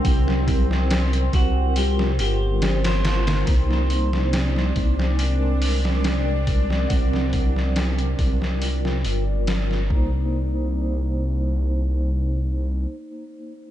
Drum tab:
HH |o-o-oxo-o-o-oooo|o-o-o-o-o-o-o-o-|o-o-oxo-o-o-o---|----------------|
SD |-o-oo----o--oooo|-o-ooo-o---oo--o|-o-oo--o-o--oo--|----------------|
BD |o-o---o---------|o-----o-------o-|o-o---o-------o-|----------------|